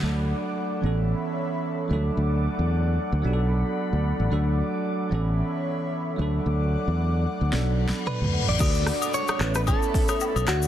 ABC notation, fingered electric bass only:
X:1
M:4/4
L:1/16
Q:"Swing 16ths" 1/4=112
K:D
V:1 name="Fingered electric bass" clef=bass
D,,3 z3 A,,,3 z4 z D,,2 | D,,3 E,,4 D,, B,,,4 z D,,2 A,,, | D,,3 z3 A,,,3 z4 z D,,2 | D,,3 E,,4 D,, B,,,4 z D,,2 A,,, |
D,,3 z3 A,,,3 z4 B,,, D,,2 |]